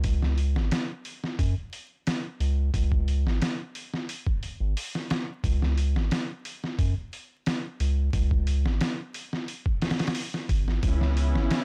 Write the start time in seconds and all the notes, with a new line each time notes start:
0.04 C#2, kick, open hi-hat
0.22 snare
0.38 open hi-hat
0.56 G#1, snare
0.71 snare, open hi-hat
1.05 open hi-hat
1.24 snare
1.39 F#2, kick, open hi-hat
1.73 open hi-hat
2.07 snare, open hi-hat
2.40 C#2, open hi-hat
2.74 C#2, kick, open hi-hat
2.92 kick
3.08 open hi-hat
3.25 G#1, snare
3.42 snare, open hi-hat
3.75 open hi-hat
3.94 snare
4.09 open hi-hat
4.26 kick
4.43 open hi-hat
4.60 G#1
4.77 open hi-hat
4.95 snare
5.10 snare, open hi-hat
5.44 C#2, kick, open hi-hat
5.62 snare
5.78 open hi-hat
5.95 G#1, snare
6.11 snare, open hi-hat
6.45 open hi-hat
6.64 snare
6.79 F#2, kick, open hi-hat
7.13 open hi-hat
7.46 snare, open hi-hat
7.80 C#2, open hi-hat
8.13 C#2, kick, open hi-hat
8.31 kick
8.47 open hi-hat
8.65 G#1, snare
8.81 snare, open hi-hat
9.14 open hi-hat
9.33 snare
9.48 open hi-hat
9.66 kick
9.82 snare, open hi-hat
9.90 snare, open hi-hat
9.99 snare, open hi-hat
10.07 snare, open hi-hat
10.15 open hi-hat
10.34 snare
10.49 G#1, kick, open hi-hat
10.68 snare
10.83 C#2 C#3 B3 C#4 E4, kick, open hi-hat
11.01 snare
11.17 open hi-hat
11.35 G#1, snare
11.51 snare, open hi-hat